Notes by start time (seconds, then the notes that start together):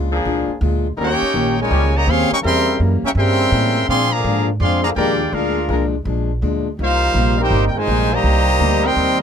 Already playing: C#2 A#2 G#3 D4 F4
0.12 F3 A#3 D4 G#4
0.24 C2 A#2 G#3 D4 F4
0.48 muted upright bass stroke
0.61 D2 A#2 G#3 D4 F4
0.97 D#2 D#3 G3 A#3 C#4 D#4 A#4
1.01 A#3 C#4 D#4 G4 A#4 C#5 G5
1.22 muted upright bass stroke
1.34 A#1 D#3 A#3 C#4 G4
1.59 A#2 C#3 G#3 D#4 A#4 C#5 G#5
1.70 C#2 D#3 G3 A#3 C#4 D#4 G4
1.95 C#3 G3 A#3 G4 C#5 D#5 A#5
2.07 D#2 D#3 A#3 C4 C#4 G4 G#4 C#5 F5 C6
2.31 G3 A#3 C#4 A#4 D#5 G5 C#6, muted upright bass stroke
2.41 E2 C#3 E3 G3 A#3 C4 C#4 E4 G4 A#4 E5 G5 C6
2.45 C#3 G3 A#4
2.80 F#2 E3 A#3 C#4 G4
3.03 G3 A#3 C#4 A#4 E5 G5 C#6, muted upright bass stroke
3.15 G2 C#3 E3 G3 A#3 C4 C#4 A#4 E5 G5 C6
3.19 G4
3.51 A2 E3 A#3 C#4 G4
3.87 A#2 F3 G#3 C4 D4 G#4 D5 F5 C6
4.11 D3 F3 A#3 G#4 D5 F5 A#5
4.24 G#2 A#2 F3 G#3 D4
4.60 F2 A#2 F3 G#3 C4 D4 G#4 D5 F5 C6
4.83 D3 F3 A#3 G#4 D5 F5 A#5
4.95 D#2 A#2 F3 G#3 D4 F4 G4 A#4 D5 G5
4.99 D4
5.32 D2 A#2 F3 G#3 D4 F4 G#4 A#4 F5
5.69 C2 A#2 F3 G#3 D4 F4 A#4
6.04 A#1 A#2 F3 G#3 D4
6.42 D2 A#2 F3 G#3 D4
6.77 C2 C3 G3 A#3 D#4
6.82 G3 A#3 D#4 F4 A#4 C5 F5
7.14 A#1 C3 G3 A#3 D#4
7.37 G3 A#3 C4 D#4 G4 A#4 C5
7.42 G5
7.50 G1 C3 G3 A#3 D#4
7.66 G5
7.75 A#2 D#3 G#3 D#4 A#4 C5 G#5, muted upright bass stroke
7.86 A#1 C3 G3 A#3 D#4
8.12 D#3 G3 A#3 G4 C5 D#5 A#5
8.22 C2 C3 G3 A#3 D#4
8.59 D2 C3 G3 A#3 D#4
8.82 D#3 G3 C4 D#4 A#4 D#5 G5 C6
8.96 D#2 C3 G3 A#3 D#4